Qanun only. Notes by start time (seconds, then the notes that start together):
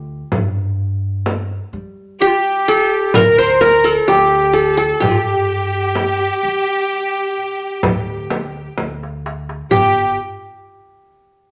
2.21 G4
2.68 A4
3.15 A#4
3.38 C5
3.61 A#4
3.84 A4
4.08 G4
4.53 A4
4.77 A4
5.00 G4
9.71 G4